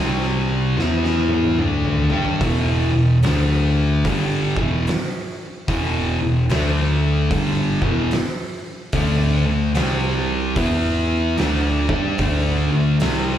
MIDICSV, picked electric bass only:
0, 0, Header, 1, 2, 480
1, 0, Start_track
1, 0, Key_signature, 1, "minor"
1, 0, Tempo, 816327
1, 1417, Time_signature, 4, 2, 24, 8
1, 7868, End_track
2, 0, Start_track
2, 0, Title_t, "Picked electric bass"
2, 0, Program_c, 0, 34
2, 0, Note_on_c, 0, 36, 92
2, 428, Note_off_c, 0, 36, 0
2, 451, Note_on_c, 0, 40, 91
2, 911, Note_off_c, 0, 40, 0
2, 937, Note_on_c, 0, 38, 92
2, 1219, Note_off_c, 0, 38, 0
2, 1243, Note_on_c, 0, 43, 91
2, 1407, Note_off_c, 0, 43, 0
2, 1415, Note_on_c, 0, 28, 84
2, 1698, Note_off_c, 0, 28, 0
2, 1728, Note_on_c, 0, 28, 76
2, 1890, Note_off_c, 0, 28, 0
2, 1910, Note_on_c, 0, 38, 98
2, 2362, Note_off_c, 0, 38, 0
2, 2382, Note_on_c, 0, 31, 94
2, 2663, Note_off_c, 0, 31, 0
2, 2684, Note_on_c, 0, 28, 91
2, 2849, Note_off_c, 0, 28, 0
2, 3340, Note_on_c, 0, 28, 90
2, 3622, Note_off_c, 0, 28, 0
2, 3641, Note_on_c, 0, 28, 76
2, 3807, Note_off_c, 0, 28, 0
2, 3815, Note_on_c, 0, 38, 93
2, 4274, Note_off_c, 0, 38, 0
2, 4299, Note_on_c, 0, 31, 93
2, 4581, Note_off_c, 0, 31, 0
2, 4596, Note_on_c, 0, 28, 96
2, 4764, Note_off_c, 0, 28, 0
2, 5252, Note_on_c, 0, 38, 90
2, 5536, Note_off_c, 0, 38, 0
2, 5557, Note_on_c, 0, 38, 76
2, 5724, Note_off_c, 0, 38, 0
2, 5734, Note_on_c, 0, 36, 97
2, 6191, Note_off_c, 0, 36, 0
2, 6211, Note_on_c, 0, 40, 90
2, 6669, Note_off_c, 0, 40, 0
2, 6694, Note_on_c, 0, 38, 95
2, 6975, Note_off_c, 0, 38, 0
2, 6991, Note_on_c, 0, 43, 93
2, 7158, Note_off_c, 0, 43, 0
2, 7171, Note_on_c, 0, 38, 93
2, 7453, Note_off_c, 0, 38, 0
2, 7473, Note_on_c, 0, 38, 82
2, 7638, Note_off_c, 0, 38, 0
2, 7649, Note_on_c, 0, 36, 92
2, 7868, Note_off_c, 0, 36, 0
2, 7868, End_track
0, 0, End_of_file